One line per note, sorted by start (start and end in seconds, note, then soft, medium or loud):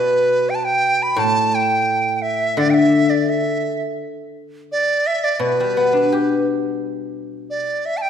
0.00 1.16 B2 medium
0.00 0.51 B4 medium
0.50 0.56 G5 medium
0.55 0.66 A5 medium
0.65 1.04 G5 medium
1.03 1.20 B5 medium
1.16 2.57 A2 medium
1.16 1.56 A5 medium
1.55 2.16 G5 medium
2.16 2.24 G5 medium
2.22 2.60 E5 medium
2.57 4.71 D3 medium
2.57 2.72 D5 medium
2.70 2.76 G5 medium
2.74 3.11 E5 medium
3.10 3.31 D5 medium
3.29 3.83 E5 medium
4.72 5.08 D5 medium
5.07 5.26 E5 medium
5.24 5.34 D5 medium
5.34 5.43 D5 medium
5.39 7.50 B2 medium
5.39 6.47 B4 medium
5.60 6.99 G3 soft
5.77 7.16 B3 soft
5.93 7.33 D4 soft
6.12 7.52 G4 soft
7.50 7.87 D5 medium
7.86 7.99 E5 medium
7.97 8.03 A5 medium
8.02 8.10 G5 medium